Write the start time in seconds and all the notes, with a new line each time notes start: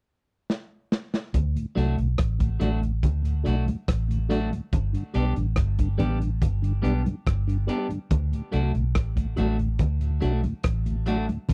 0.50 snare
0.92 snare
1.14 snare
1.34 D2, kick, closed hi-hat, low conga
1.55 D2 A2, closed hi-hat
1.75 C2 F#3 A3 D4 F#4, closed hi-hat
1.97 B1 D2 A2, closed hi-hat
2.18 A1, kick, cross-stick, closed hi-hat
2.39 D2 A2, kick, closed hi-hat
2.59 A1 F#3 A3 D4 F#4, closed hi-hat, high conga, low conga
2.81 D2 A2, closed hi-hat
3.03 D2, kick, closed hi-hat, low conga
3.22 D2 A2, closed hi-hat
3.44 B1 F#3 A3 D4 F#4, closed hi-hat
3.66 D2 A2, closed hi-hat, high conga
3.88 A1, kick, cross-stick, closed hi-hat, high conga
4.08 D2 A2, closed hi-hat
4.29 F#3 A3 D4 F#4, closed hi-hat
4.51 D2 A2, closed hi-hat, high conga
4.73 G1, kick, closed hi-hat, low conga
4.93 G2 D3, closed hi-hat
5.14 B1 G3 B3 D4 G4, closed hi-hat
5.36 A1 G2 D3, closed hi-hat
5.56 G1, kick, cross-stick, closed hi-hat
5.78 G2 D3, kick, closed hi-hat
5.98 A1 G3 B3 D4 G4, closed hi-hat, low conga
6.19 G2 D3, closed hi-hat
6.42 G1, kick, closed hi-hat, low conga
6.62 G2 D3, closed hi-hat
6.82 B1 G3 B3 D4 G4, closed hi-hat
7.05 G2 D3, closed hi-hat, high conga
7.27 G1, kick, cross-stick, closed hi-hat, high conga
7.47 G2 D3, closed hi-hat
7.67 G3 B3 D4 G4, closed hi-hat
7.88 G2 D3, closed hi-hat, high conga
8.11 D2, kick, closed hi-hat, low conga
8.31 D2 A2, closed hi-hat
8.51 C2 F#3 A3 D4 F#4, closed hi-hat
8.74 B1 D2 A2, closed hi-hat
8.95 A1, kick, cross-stick, closed hi-hat
9.16 D2 A2, kick, closed hi-hat
9.36 A1 F#3 A3 D4 F#4, closed hi-hat, high conga, low conga
9.58 D2 A2, closed hi-hat
9.79 D2, kick, closed hi-hat, low conga
10.00 D2 A2, closed hi-hat
10.21 B1 F#3 A3 D4 F#4, closed hi-hat
10.44 D2 A2, closed hi-hat, high conga
10.63 A1, kick, cross-stick, closed hi-hat, high conga
10.86 D2 A2, closed hi-hat
11.06 F#3 A3 D4 F#4, closed hi-hat
11.29 D2 A2, closed hi-hat, high conga
11.49 G1, kick, closed hi-hat, low conga